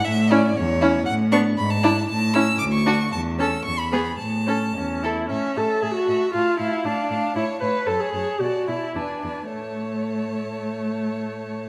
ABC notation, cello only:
X:1
M:2/4
L:1/8
Q:1/4=114
K:A
V:1 name="Cello" clef=bass
A,,2 E,,2 | A,,2 G,,2 | A,,2 D,,2 | E,,2 E,,2 |
A,,2 E,,2 | A,, A,, A,, A,, | A,, A,, A,, A,, | A,, A,, F,, F,, |
B,, B,, E,, E,, | A,,4- | A,,4 |]